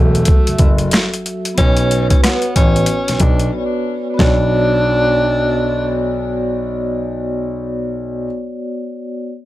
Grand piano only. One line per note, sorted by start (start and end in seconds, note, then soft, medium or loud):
0.00 0.22 E1 medium
0.48 0.53 F#1 soft
0.60 0.86 F#1 medium
1.58 2.11 B1 loud
2.56 2.83 A1 medium
3.09 3.14 B1 soft
3.21 3.47 B1 medium
4.20 8.26 B1 medium